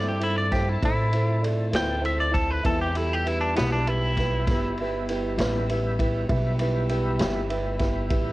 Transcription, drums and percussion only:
0.21 ride medium
0.52 kick medium
0.52 snare soft
0.52 ride medium
0.83 kick loud
0.83 ride medium
1.13 ride medium
1.44 ride medium
1.73 snare loud
1.73 ride medium
2.05 ride medium
2.34 kick medium
2.34 ride medium
2.65 kick loud
2.65 ride medium
2.95 ride medium
3.27 ride medium
3.56 snare loud
3.56 ride medium
3.87 ride medium
4.17 kick medium
4.17 snare soft
4.17 ride medium
4.47 kick loud
4.47 snare soft
4.47 ride medium
4.78 ride medium
5.09 ride medium
5.38 snare loud
5.38 ride medium
5.70 ride medium
5.99 kick medium
5.99 ride medium
6.29 kick loud
6.29 ride medium
6.59 ride medium
6.89 ride medium
7.19 snare loud
7.19 ride medium
7.50 ride medium
7.79 kick medium
7.79 snare soft
7.79 ride medium
8.10 kick loud
8.10 ride medium

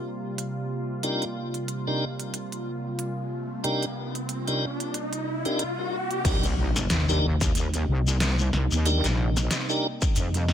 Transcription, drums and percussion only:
0.38 closed hi-hat medium
1.03 closed hi-hat medium
1.22 closed hi-hat soft
1.54 closed hi-hat soft
1.68 closed hi-hat medium
2.20 closed hi-hat soft
2.34 closed hi-hat medium
2.52 closed hi-hat soft
2.99 closed hi-hat medium
3.64 closed hi-hat medium
3.83 closed hi-hat soft
4.15 closed hi-hat soft
4.29 closed hi-hat medium
4.48 closed hi-hat soft
4.80 closed hi-hat medium
4.94 closed hi-hat medium
5.13 closed hi-hat soft
5.45 closed hi-hat soft
5.59 closed hi-hat medium
6.11 closed hi-hat soft
6.25 kick loud
6.25 closed hi-hat medium
6.25 crash loud
6.25 shekere medium
6.43 closed hi-hat soft
6.43 shekere soft
6.76 snare medium
6.76 closed hi-hat soft
6.76 shekere medium
6.90 snare loud
6.90 closed hi-hat medium
6.90 shekere medium
7.09 shekere soft
7.41 kick loud
7.41 closed hi-hat medium
7.41 shekere medium
7.55 closed hi-hat medium
7.55 shekere medium
7.74 closed hi-hat medium
7.74 shekere soft
8.07 shekere medium
8.20 snare loud
8.20 closed hi-hat medium
8.20 shekere medium
8.39 shekere soft
8.53 snare medium
8.71 shekere medium
8.86 closed hi-hat medium
8.86 shekere medium
9.04 snare soft
9.04 closed hi-hat soft
9.04 shekere soft
9.37 snare medium
9.37 closed hi-hat soft
9.37 shekere medium
9.51 snare loud
9.51 closed hi-hat medium
9.51 shekere medium
9.69 shekere soft
10.02 kick loud
10.02 closed hi-hat medium
10.02 shekere medium
10.16 closed hi-hat medium
10.16 shekere medium
10.34 closed hi-hat medium
10.34 shekere soft
10.48 snare medium

